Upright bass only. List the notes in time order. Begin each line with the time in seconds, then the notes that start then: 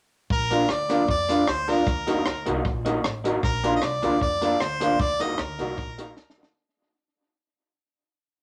0.30 A#1
0.69 D2
1.09 F2
1.48 D2
1.87 D#2
2.26 D2
2.47 C2
2.65 A#1
3.04 A1
3.43 A#1
3.82 C2
4.03 D2
4.21 F2
4.60 D2
5.00 D#2
5.39 D2
5.60 C2
5.78 A#1
6.16 D2